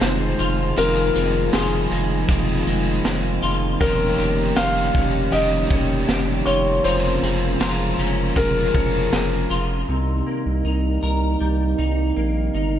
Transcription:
Already playing: F2 D#3 F3 G#3 C4 D#4 F4 G#4 C5
0.01 F1 C4, snare, closed hi-hat, tambourine
0.39 F1 F4, closed hi-hat
0.76 F1 F2 F3 A#3 C4 D#4 F4 G#4 A#4, closed hi-hat
1.15 F1 C4, closed hi-hat
1.53 F1 F3 C4 D#4 F4 G#4, snare, closed hi-hat, tambourine
1.91 F1 G#3, closed hi-hat
2.29 F1 F3 C4 D#4 G#4, kick, closed hi-hat
2.66 F1 G#3 C4 D#4 G#4, closed hi-hat
3.05 F1 C4, snare, closed hi-hat, tambourine
3.42 F1 F4, closed hi-hat
3.80 F1 F2 F3 G3 A#3 C#4 D#4 F4 G4 A#4 C#5, kick, closed hi-hat
4.18 F1 G4, closed hi-hat
4.56 F1 A#3 D#4 F4 G4 C#5 F5, snare, closed hi-hat, tambourine
4.94 F1 C#4, kick, closed hi-hat
5.31 F1 F3 A#3 D#4 G4 D#5, closed hi-hat
5.35 G4 C#5
5.70 F1 C#4, kick, closed hi-hat
6.08 F1 G4, snare, closed hi-hat, tambourine
6.45 F1 F4 C#5, closed hi-hat
6.84 F1 F2 C#3 F3 G#3 C#4 F4 G#4 A#4 C5, closed hi-hat
7.22 F1 G#4, closed hi-hat
7.60 F1 G#3 C#4 F4 G#4 A#4, snare, closed hi-hat, tambourine
7.98 F1 C#4, closed hi-hat
8.36 F1 F3 G#3 C#4 G#4 A#4, kick, closed hi-hat
8.74 F1 C#4 G#4 A#4, kick, closed hi-hat
9.12 F1 G#4, snare, closed hi-hat, tambourine
9.50 F1 F4, closed hi-hat
9.89 C2 C3 D#3 G3 A#3 D#4
10.27 A#3
10.46 C2
10.65 C2 D#4
11.03 C2 A#4
11.40 C2 G3
11.79 C2 D#4
12.16 A#1 A#3
12.54 G1 D#4

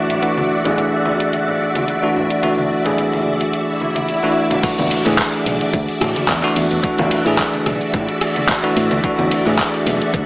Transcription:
Already playing: E3 A3 D4 F#4 D5 E5, downlifter
0.10 closed hi-hat, low conga
0.22 E3 A3 D4 F#4, closed hi-hat
0.38 muted conga, high conga
0.64 E3 A3 D4 G#4, closed hi-hat, muted conga, low conga
0.78 closed hi-hat
1.05 muted conga, high conga
1.20 closed hi-hat
1.33 closed hi-hat, muted conga
1.48 low conga
1.75 closed hi-hat, muted conga, high conga
1.88 closed hi-hat
2.02 E3 A3 D4 F#4, muted conga
2.16 low conga
2.30 closed hi-hat
2.43 E3 A3 D4 F#4, closed hi-hat, muted conga
2.58 high conga
2.70 muted conga
2.84 E3 A3 D4 G#4, closed hi-hat, low conga
2.98 closed hi-hat
3.13 muted conga
3.26 high conga
3.40 closed hi-hat, muted conga
3.53 closed hi-hat, swell
3.81 muted conga
3.95 closed hi-hat, high conga
4.08 closed hi-hat, muted conga
4.23 E3 A3 D4 F#4
4.50 closed hi-hat, muted conga, low conga
4.63 E3 A3 D4 F#4 D5 E5, muted fingered electric bass stroke, kick, closed hi-hat, crash, muted conga
4.78 E2, closed hi-hat, high conga, low conga
4.91 open hi-hat, ride
5.04 A2 E3 A3 D4 G#4, closed hi-hat, muted conga
5.18 kick, clap, closed hi-hat
5.34 closed hi-hat
5.46 B1, open hi-hat, ride, high conga
5.61 closed hi-hat, muted conga
5.73 D2, kick, closed hi-hat
5.88 closed hi-hat
6.01 A2, cross-stick, open hi-hat, ride, muted conga
6.16 muted fingered electric bass stroke, closed hi-hat, high conga
6.28 E2, kick, clap, closed hi-hat
6.43 E3 A3 D4 F#4, clap, closed hi-hat
6.56 E2, open hi-hat, ride, muted conga
6.71 E2, closed hi-hat
6.83 E3 A3 D4 F#4, muted fingered electric bass stroke, kick, closed hi-hat
6.98 E2, closed hi-hat, muted conga, high conga, low conga
7.11 open hi-hat, ride
7.25 A2 E3 A3 D4 G#4, closed hi-hat
7.38 kick, clap, closed hi-hat
7.54 closed hi-hat, muted conga
7.66 B1, kick, cross-stick, open hi-hat, ride, high conga
7.81 closed hi-hat
7.94 A2, kick, closed hi-hat, muted conga
8.09 closed hi-hat
8.21 cross-stick, open hi-hat, ride
8.36 closed hi-hat, high conga
8.48 kick, clap, closed hi-hat, muted conga
8.63 E3 A3 D4 F#4, closed hi-hat
8.76 A2, open hi-hat, ride
8.91 D2, closed hi-hat, muted conga
9.03 E3 A3 D4 F#4, kick, closed hi-hat
9.18 E2, closed hi-hat, high conga, low conga
9.31 open hi-hat, ride
9.45 A2 E3 A3 D4 G#4, closed hi-hat, muted conga
9.59 kick, clap, closed hi-hat
9.74 closed hi-hat
9.86 B1, open hi-hat, ride, muted conga, high conga
10.02 closed hi-hat
10.14 D2, kick, closed hi-hat

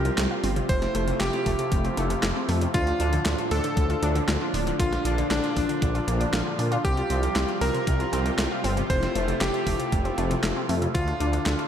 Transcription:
Already playing: C2 C3 F3 G3 F4 G4
0.05 C3, closed hi-hat
0.18 C2 C3, snare, clap, closed hi-hat
0.31 F4
0.44 G1 C4, open hi-hat
0.56 C3, closed hi-hat
0.69 F1 C3 F3 A3 E4 C5, kick, closed hi-hat
0.82 C4, snare, closed hi-hat
0.95 F1 A3, closed hi-hat
1.07 C3, closed hi-hat
1.20 F1 C3 G4, snare, clap, closed hi-hat
1.33 C4, closed hi-hat
1.46 F1 A3, kick, open hi-hat
1.59 C3, closed hi-hat
1.72 F1 C3, kick, closed hi-hat
1.85 C4, closed hi-hat
1.97 F1 A3, closed hi-hat
2.10 C3, closed hi-hat
2.23 F1 C3, snare, clap, closed hi-hat
2.36 C4
2.49 F2 A3, open hi-hat
2.61 C3, closed hi-hat
2.74 D2 A2 D3 D4 F4, kick, closed hi-hat
2.87 F4, closed hi-hat
3.00 D2 D4, closed hi-hat
3.13 D3, closed hi-hat
3.25 D2 D3, snare, clap, closed hi-hat
3.38 F4, closed hi-hat
3.51 D2 D4 A4, open hi-hat
3.64 D3, closed hi-hat
3.77 D2 D3, kick, closed hi-hat
3.90 F4, closed hi-hat
4.03 D2 D4, closed hi-hat
4.15 D3, closed hi-hat
4.28 D2 D3, snare, clap, closed hi-hat
4.41 F4
4.54 D1 D4, open hi-hat
4.67 D3, closed hi-hat
4.79 A#1 A#2 D3 D4 F4, kick, closed hi-hat
4.92 F4, snare, closed hi-hat
5.05 A#1 D4, closed hi-hat
5.18 D3, closed hi-hat
5.31 A#1 D3 D4, snare, clap, closed hi-hat
5.43 F4, closed hi-hat
5.56 A#1 D4, kick, open hi-hat
5.69 D3, closed hi-hat
5.82 A#1 D3, kick, closed hi-hat
5.95 F4, closed hi-hat
6.07 A#1 A#3, closed hi-hat
6.20 D4, closed hi-hat
6.33 A#1 F4, snare, clap, closed hi-hat
6.46 D3
6.59 A#2 D4, open hi-hat
6.72 F4, closed hi-hat
6.84 C2 C3 G3 G4, kick, closed hi-hat
6.97 F4, closed hi-hat
7.10 C2 C4, closed hi-hat
7.23 C3, closed hi-hat
7.36 C2 C3, snare, clap, closed hi-hat
7.49 F4, closed hi-hat
7.61 C2 C4 A#4, open hi-hat
7.74 C3, closed hi-hat
7.87 C2 C3, kick, closed hi-hat
8.00 F4, closed hi-hat
8.13 C2 C4, closed hi-hat
8.25 C3, closed hi-hat
8.38 C2 C3, snare, clap, closed hi-hat
8.51 F4
8.64 G1 C4, open hi-hat
8.77 C3, closed hi-hat
8.90 F1 C3 A3 E4 C5, kick, closed hi-hat
9.02 C4, snare, closed hi-hat
9.15 F1 A3, closed hi-hat
9.28 C3, closed hi-hat
9.41 F1 C3 G4, snare, clap, closed hi-hat
9.53 C4, closed hi-hat
9.66 F1 A3, kick, open hi-hat
9.79 C3, closed hi-hat
9.92 F1 C3, kick, closed hi-hat
10.05 C4, closed hi-hat
10.18 F1 A3, closed hi-hat
10.31 C3, closed hi-hat
10.43 F1 C3, snare, clap, closed hi-hat
10.56 C4
10.69 F2 A3, open hi-hat
10.82 C3, closed hi-hat
10.95 D2 A2 D3 D4 F4, kick, closed hi-hat
11.08 F4, closed hi-hat
11.20 D2 D4, closed hi-hat
11.33 D3, closed hi-hat
11.46 D2 D3, snare, clap, closed hi-hat
11.59 F4, closed hi-hat

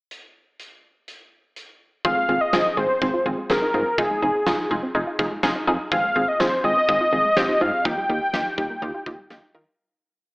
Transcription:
0.11 closed hi-hat
0.60 closed hi-hat
1.08 closed hi-hat
1.56 closed hi-hat
2.05 G#1 F3 C4 F4 G#4 F5, kick
2.17 G#3
2.29 G#1 C4 F4 G#4
2.41 D#5
2.53 G#1 C4 F4 G#4, snare
2.65 F3
2.77 G#1 G#3 C4 F4 G#4 C5
2.89 C4
3.02 G#1 C4 D#4 F4 G#4, kick
3.14 F4
3.26 G#1 F3 C4 F4 G#4
3.38 G#3
3.50 G#1 C4 F4 G#4 A#4, snare
3.62 D#4
3.74 G#2 C4 F4 G#4
3.98 F1 F3 D#4 F4 G#4, kick
4.10 G#3
4.22 F1 C4 D#4 F4 G#4
4.47 F1 D#4 F4 G#4, snare
4.59 F3
4.71 F1 G#3 D#4 F4 G#4
4.83 C4
4.95 F1 D#4 F4 G#4
5.07 F4
5.19 F1 F3 D#4 F4 G#4, kick
5.31 G#3
5.43 F1 C4 D#4 F4 G#4, snare
5.55 D#4
5.67 F2 D#4 F4 G#4
5.92 G#1 F3 C4 F4 G#4 F5, kick
6.04 G#3
6.16 G#1 C4 F4 G#4
6.28 D#5
6.40 G#1 C4 F4 G#4 C5, snare
6.52 F3
6.64 G#1 G#3 C4 F4 G#4 D#5
6.76 C4
6.88 G#1 C4 D#4 F4 G#4, kick
7.01 F4
7.13 G#1 F3 C4 F4 G#4
7.25 G#3
7.37 G#1 C4 F4 G4, snare
7.49 D#4
7.61 G#2 C4 F4 G#4 F5
7.85 D#2 F3 D#4 F4 G4 G5, kick
7.97 G3
8.09 D#2 A#3 D#4 F4 G4
8.33 D#2 D#4 F4 G4, snare
8.46 F3
8.58 D#2 G3 D#4 F4 G4, kick
8.70 A#3
8.82 D#2 D#4 F4 G4
8.94 F4
9.06 D#2 F3 D#4 F4 G4, kick
9.18 G3
9.30 D#2 A#3 D#4 F4 G4, snare
9.43 D#4
9.55 D#3 D#4 F4 A#4

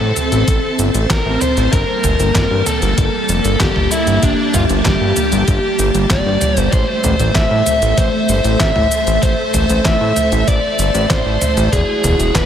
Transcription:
Already playing: C4 A4 C5 E5 A5
0.01 A2
0.16 closed hi-hat, mid tom, cabasa
0.32 A1, closed hi-hat, cabasa
0.48 A1, kick, closed hi-hat, cabasa
0.79 G1, closed hi-hat, cabasa
0.94 A1, closed hi-hat, cabasa
1.10 A1 A#4, kick, snare, clap, closed hi-hat, cabasa
1.26 A1
1.41 C5, closed hi-hat, mid tom, cabasa
1.57 A1, closed hi-hat, cabasa
1.73 G1 G3 A#3 G4 A#4, kick, closed hi-hat, cabasa
2.04 G1, closed hi-hat, mid tom, cabasa
2.20 G1, closed hi-hat, cabasa
2.35 G1, kick, snare, clap, closed hi-hat, cabasa
2.51 G2
2.66 A4, closed hi-hat, mid tom, cabasa
2.82 G1, closed hi-hat, cabasa
2.98 G1, kick, closed hi-hat, cabasa
3.29 F1, closed hi-hat, cabasa
3.45 G1, closed hi-hat, cabasa
3.60 G1 G4, kick, snare, clap, closed hi-hat, cabasa
3.76 G1, mid tom
3.91 E4, closed hi-hat, cabasa
4.07 G1, closed hi-hat, cabasa
4.23 G1 D4, kick, closed hi-hat, cabasa
4.54 G1 F4, closed hi-hat, mid tom, cabasa
4.69 G1, closed hi-hat, cabasa
4.85 G1 G4, kick, snare, clap, closed hi-hat, cabasa
5.01 G2
5.16 closed hi-hat, mid tom, cabasa
5.32 G1, closed hi-hat, cabasa
5.48 G1, kick, closed hi-hat, cabasa
5.79 G1, closed hi-hat, cabasa
5.95 G1, closed hi-hat, cabasa
6.10 G1 D5, kick, snare, clap, closed hi-hat, cabasa
6.26 G1
6.41 closed hi-hat, mid tom, cabasa
6.57 G1 C5, closed hi-hat, cabasa
6.72 A1 A3 A4 C5 E5, kick, closed hi-hat, cabasa
7.04 A1, closed hi-hat, mid tom, cabasa
7.19 A1, closed hi-hat, cabasa
7.35 A1 E5, kick, snare, clap, closed hi-hat, cabasa
7.51 A2
7.66 closed hi-hat, mid tom, cabasa
7.82 A1, closed hi-hat, cabasa
7.98 A1 C5, kick, closed hi-hat, cabasa
8.29 G1, closed hi-hat, cabasa
8.44 A1, closed hi-hat, cabasa
8.60 A1 E5, kick, snare, clap, closed hi-hat, cabasa
8.76 A1, mid tom
8.91 closed hi-hat, cabasa
9.07 A1, closed hi-hat, cabasa
9.23 A1 C5, kick, closed hi-hat, cabasa
9.54 A1, closed hi-hat, mid tom, cabasa
9.70 A1, closed hi-hat, cabasa
9.85 A1 E5, kick, snare, clap, closed hi-hat, cabasa
10.01 A2
10.16 closed hi-hat, mid tom, cabasa
10.32 A1, closed hi-hat, cabasa
10.48 A1 D5, kick, closed hi-hat, cabasa
10.79 G1, closed hi-hat, cabasa
10.94 A1, closed hi-hat, cabasa
11.10 A1 C5, kick, snare, clap, closed hi-hat, cabasa
11.26 A1
11.42 closed hi-hat, mid tom, cabasa
11.57 A1, closed hi-hat, cabasa
11.73 E1 E4 F#4 G#4, kick, closed hi-hat, cabasa
12.04 E1, closed hi-hat, mid tom, cabasa
12.20 E1, closed hi-hat, cabasa
12.35 E1 B4, kick, snare, clap, closed hi-hat, cabasa

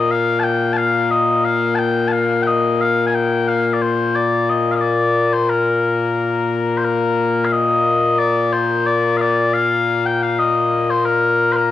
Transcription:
Already playing: A#2 A#3 D#5
0.11 F5
0.39 A5
0.44 G5
0.73 A5
0.77 F5
1.11 D#5
1.45 F5
1.75 G5 A5
2.08 A5
2.12 F5
2.42 G5
2.47 D#5
2.81 F5
3.06 G#5
3.15 G5
3.48 F5
3.73 D5
3.82 C5
4.16 D5
4.50 D#5
4.71 F5
4.75 D#5
4.81 D5
5.33 C5
5.49 A#4
6.77 C5
6.84 A#4
7.45 F5
7.52 D#5
8.18 D5
8.53 C5
8.86 D5
9.17 F5
9.21 D5
9.53 F5
10.06 G5
10.22 F5
10.39 D#5
10.90 C5
11.05 A#4
11.52 A#4 C5

